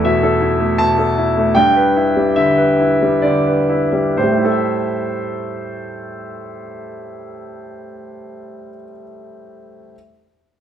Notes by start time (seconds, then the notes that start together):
Already playing: E2 A3 E4 A4
0.04 B2 E5
0.23 A4
0.41 E4
0.59 A3
0.78 B2 A5
0.98 A4
1.18 E4
1.38 A3
1.55 G2 G5
1.76 B4
1.96 E4
2.17 G3
2.36 D3 E5
2.58 B4
2.80 E4
3.02 G3
3.22 D3 D5
3.47 B4
3.69 E4
3.93 G3
4.17 A2 C5
4.24 G3
4.31 A3
4.37 E4
4.44 A4
4.51 E5